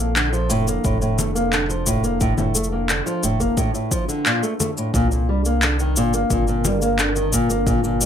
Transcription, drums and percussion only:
0.16 clap, cabasa
0.33 cabasa
0.50 cabasa
0.68 cabasa
0.84 kick, cabasa
1.02 cabasa
1.19 low conga, cabasa
1.36 cabasa
1.53 clap, cabasa
1.70 cabasa
1.87 kick, cabasa
2.04 cabasa
2.21 kick, cabasa
2.38 low conga, cabasa
2.55 cabasa
2.64 cabasa
2.89 clap, cabasa
3.07 cabasa
3.24 cabasa
3.40 kick, cabasa
3.57 kick, cabasa
3.75 cabasa
3.91 kick, cabasa
4.09 cabasa
4.26 clap, cabasa
4.43 cabasa
4.60 low conga, cabasa
4.78 cabasa
4.94 kick, cabasa
5.12 cabasa
5.45 cabasa
5.62 clap, cabasa
5.79 cabasa
5.96 cabasa
6.14 cabasa
6.30 kick, cabasa
6.48 cabasa
6.65 low conga, cabasa
6.82 cabasa
6.99 clap, cabasa
7.16 cabasa
7.33 kick, cabasa
7.50 cabasa
7.67 kick, cabasa
7.84 cabasa
8.01 cabasa

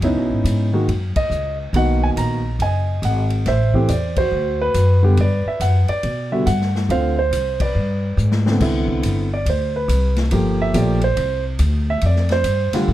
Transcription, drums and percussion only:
0.02 ride
0.45 hi-hat pedal, ride
0.89 ride
1.16 kick, ride
1.31 hi-hat pedal
1.74 ride
2.17 hi-hat pedal, ride
2.60 ride
3.03 hi-hat pedal, ride
3.30 ride
3.46 snare, ride
3.74 kick
3.88 hi-hat pedal, ride
4.16 kick, ride
4.74 hi-hat pedal, ride
5.17 ride
5.60 hi-hat pedal, ride
5.88 ride
6.03 ride
6.47 hi-hat pedal, ride
6.61 snare
6.75 snare
6.90 ride
7.32 hi-hat pedal, ride
7.60 kick, ride
8.18 hi-hat pedal
8.32 snare
8.46 snare
8.60 kick, snare, crash
8.88 kick
9.03 hi-hat pedal, ride
9.46 ride
9.89 hi-hat pedal, ride
10.16 snare, ride
10.31 ride
10.74 hi-hat pedal, ride
11.01 ride
11.17 ride
11.59 hi-hat pedal, ride
12.01 ride
12.16 snare
12.29 snare, ride
12.44 hi-hat pedal, ride
12.73 snare, ride

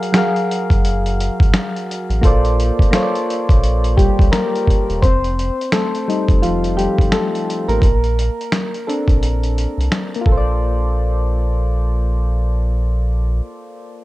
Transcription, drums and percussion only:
0.03 closed hi-hat
0.14 finger snap, snare, closed hi-hat
0.36 closed hi-hat
0.51 closed hi-hat
0.70 kick, closed hi-hat
0.85 closed hi-hat
1.06 closed hi-hat
1.20 closed hi-hat
1.40 kick, closed hi-hat
1.54 finger snap, snare, closed hi-hat
1.76 closed hi-hat
1.91 closed hi-hat
2.10 closed hi-hat
2.23 kick, closed hi-hat
2.45 closed hi-hat
2.60 closed hi-hat
2.79 kick, closed hi-hat
2.93 finger snap, snare, closed hi-hat
3.15 closed hi-hat
3.30 closed hi-hat
3.49 kick, closed hi-hat
3.64 closed hi-hat
3.84 closed hi-hat
3.98 kick, closed hi-hat
4.19 kick, closed hi-hat
4.33 finger snap, snare, closed hi-hat
4.55 closed hi-hat
4.67 kick, closed hi-hat
4.90 closed hi-hat
5.03 kick, closed hi-hat
5.24 closed hi-hat
5.39 closed hi-hat
5.61 closed hi-hat
5.72 finger snap, snare, closed hi-hat
5.95 closed hi-hat
6.10 closed hi-hat
6.29 kick, closed hi-hat
6.43 closed hi-hat
6.64 closed hi-hat
6.79 closed hi-hat
6.98 kick, closed hi-hat
7.12 finger snap, snare, closed hi-hat
7.35 closed hi-hat
7.50 closed hi-hat
7.69 closed hi-hat
7.82 kick, closed hi-hat
8.04 closed hi-hat
8.19 closed hi-hat
8.41 closed hi-hat
8.52 finger snap, snare, closed hi-hat
8.74 closed hi-hat
8.89 closed hi-hat
9.08 kick, closed hi-hat
9.23 closed hi-hat
9.44 closed hi-hat
9.58 closed hi-hat
9.81 closed hi-hat
9.92 finger snap, snare, closed hi-hat
10.14 closed hi-hat
10.26 kick

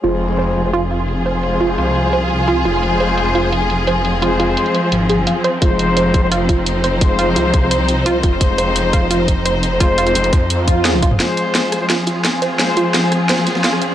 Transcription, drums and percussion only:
0.04 closed hi-hat
0.21 closed hi-hat
0.39 closed hi-hat
0.56 closed hi-hat
0.73 closed hi-hat
0.91 closed hi-hat
1.08 closed hi-hat
1.26 closed hi-hat
1.43 closed hi-hat
1.61 closed hi-hat
1.78 closed hi-hat
1.96 closed hi-hat
2.13 closed hi-hat
2.30 closed hi-hat
2.48 closed hi-hat
2.65 closed hi-hat
2.83 closed hi-hat
3.00 closed hi-hat
3.18 closed hi-hat
3.35 closed hi-hat
3.52 closed hi-hat
3.70 closed hi-hat
3.87 closed hi-hat
4.05 closed hi-hat
4.22 closed hi-hat
4.40 closed hi-hat
4.57 closed hi-hat
4.66 closed hi-hat
4.75 closed hi-hat
4.92 closed hi-hat
5.09 closed hi-hat
5.27 closed hi-hat
5.44 closed hi-hat
5.62 kick, closed hi-hat
5.79 closed hi-hat
5.97 closed hi-hat
6.14 kick, closed hi-hat
6.32 closed hi-hat
6.49 kick, closed hi-hat
6.66 closed hi-hat
6.84 closed hi-hat
7.01 kick, closed hi-hat
7.19 closed hi-hat
7.36 closed hi-hat
7.54 kick, closed hi-hat
7.71 closed hi-hat
7.89 closed hi-hat
8.06 closed hi-hat
8.23 kick, closed hi-hat
8.41 kick, closed hi-hat
8.58 closed hi-hat
8.76 closed hi-hat
8.93 kick, closed hi-hat
9.11 closed hi-hat
9.28 kick, closed hi-hat
9.46 closed hi-hat
9.63 closed hi-hat
9.80 kick, closed hi-hat
9.98 closed hi-hat
10.07 closed hi-hat
10.15 closed hi-hat
10.24 closed hi-hat
10.33 kick, closed hi-hat
10.50 closed hi-hat
10.68 kick, closed hi-hat
10.85 snare, closed hi-hat
10.94 high tom
11.03 kick, closed hi-hat
11.11 mid tom
11.20 snare, closed hi-hat, ride
11.37 closed hi-hat, ride
11.55 snare, closed hi-hat, ride
11.72 cross-stick, snare, closed hi-hat, ride
11.90 snare, closed hi-hat, ride
11.98 ride
12.07 closed hi-hat, ride
12.24 snare, closed hi-hat, ride
12.42 closed hi-hat, ride
12.59 snare, closed hi-hat, ride
12.68 snare
12.76 closed hi-hat, ride
12.94 snare, closed hi-hat, ride
13.04 ride
13.12 cross-stick, closed hi-hat, ride
13.29 snare, closed hi-hat, ride
13.38 snare, ride
13.46 snare, closed hi-hat, ride
13.55 snare, ride
13.64 snare, closed hi-hat, ride
13.73 cross-stick
13.82 closed hi-hat, open hi-hat

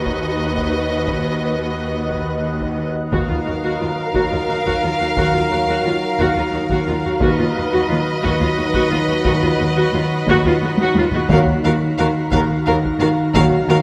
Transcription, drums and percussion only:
0.06 taiko
0.56 taiko
1.07 taiko
2.10 taiko
2.61 taiko
3.12 taiko
3.29 taiko low
4.14 taiko
4.32 taiko low
4.66 taiko
5.17 taiko
5.34 taiko low
6.19 taiko
6.36 taiko low
6.70 taiko
7.20 taiko
7.38 taiko low
8.24 taiko
8.41 taiko low
8.74 taiko
9.25 taiko
9.42 taiko low
10.28 taiko
10.44 taiko low
10.78 taiko high
10.96 taiko high
11.12 taiko low
11.29 taiko
11.47 taiko low
12.32 taiko
12.49 taiko low
12.83 taiko
13.34 taiko
13.51 taiko low

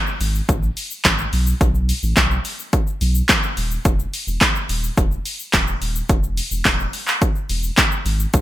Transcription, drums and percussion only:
0.07 shaker
0.21 open hi-hat, shaker
0.35 shaker
0.49 kick, closed hi-hat, shaker
0.63 shaker
0.77 open hi-hat, shaker
0.91 shaker
1.05 kick, snare, clap, closed hi-hat, shaker
1.19 shaker
1.33 open hi-hat, shaker
1.47 shaker
1.61 kick, closed hi-hat, shaker
1.75 shaker
1.89 open hi-hat, shaker
2.03 shaker
2.17 kick, snare, clap, closed hi-hat, shaker
2.31 shaker
2.45 open hi-hat, shaker
2.59 shaker
2.73 kick, closed hi-hat, shaker
2.87 shaker
3.01 open hi-hat, shaker
3.15 shaker
3.29 kick, snare, clap, closed hi-hat, shaker
3.43 shaker
3.57 open hi-hat, shaker
3.71 shaker
3.85 kick, closed hi-hat, shaker
3.99 shaker
4.14 open hi-hat, shaker
4.28 shaker
4.41 kick, snare, clap, closed hi-hat, shaker
4.55 shaker
4.69 open hi-hat, shaker
4.84 shaker
4.98 kick, closed hi-hat, shaker
5.12 shaker
5.26 open hi-hat, shaker
5.39 shaker
5.53 kick, snare, clap, closed hi-hat, shaker
5.67 shaker
5.82 open hi-hat, shaker
5.95 shaker
6.09 kick, closed hi-hat, shaker
6.23 shaker
6.37 open hi-hat, shaker
6.51 shaker
6.65 kick, snare, clap, closed hi-hat, shaker
6.79 shaker
6.93 open hi-hat, shaker
7.08 clap, shaker
7.22 kick, closed hi-hat, shaker
7.35 shaker
7.49 open hi-hat, shaker
7.63 shaker
7.77 kick, snare, clap, closed hi-hat, shaker
7.92 shaker
8.06 open hi-hat, shaker
8.20 shaker
8.34 kick, closed hi-hat, shaker

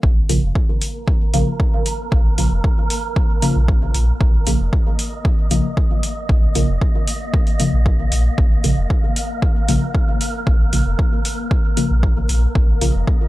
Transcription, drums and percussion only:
0.03 kick
0.29 open hi-hat
0.55 kick
0.81 open hi-hat
1.08 kick
1.34 open hi-hat
1.60 kick
1.86 open hi-hat
2.12 kick
2.38 open hi-hat
2.64 kick
2.90 open hi-hat
3.16 kick
3.42 open hi-hat
3.68 kick
3.94 open hi-hat
4.21 kick
4.47 open hi-hat
4.73 kick
4.99 open hi-hat
5.25 kick
5.51 open hi-hat
5.77 kick
6.03 open hi-hat
6.29 kick
6.55 open hi-hat
6.82 kick
7.08 open hi-hat
7.34 kick
7.47 open hi-hat
7.60 open hi-hat
7.86 kick
8.12 open hi-hat
8.38 kick
8.64 open hi-hat
8.90 kick
9.16 open hi-hat
9.42 kick
9.68 open hi-hat
9.95 kick
10.21 open hi-hat
10.47 kick
10.73 open hi-hat
10.99 kick
11.25 open hi-hat
11.51 kick
11.77 open hi-hat
12.03 kick
12.29 open hi-hat
12.55 kick
12.81 open hi-hat
13.07 kick

